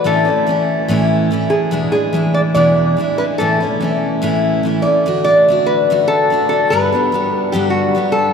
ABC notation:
X:1
M:4/4
L:1/8
Q:1/4=144
K:Amix
V:1 name="Resonator guitar played with a steel bar"
A6- A ^G- | ^G G2 d d3 B | A6- A d- | d d2 B2 A2 A |
B3 z G F2 A |]
V:2 name="Steel-string acoustic guitar"
[A,,E,A,CE] [A,CE] [E,A,CE]2 [A,,E,A,CE]2 [E,A,CE]2 | [E,,B,,E,^G,DE] [E,G,DE] [E,G,DE]2 [E,,B,,E,G,DE]2 [E,G,DE] [E,G,DE] | [A,,E,A,CE] [A,CE] [E,A,CE]2 [A,,E,A,CE]2 [E,A,CE] [A,CE] | [D,A,DF] [A,DF] [D,A,DF]2 [D,A,DF]2 [D,A,DF] [A,DF] |
[G,,D,G,B,DG] [G,B,DG] [G,B,DG]2 [G,,D,G,B,DG]2 [G,B,DG]2 |]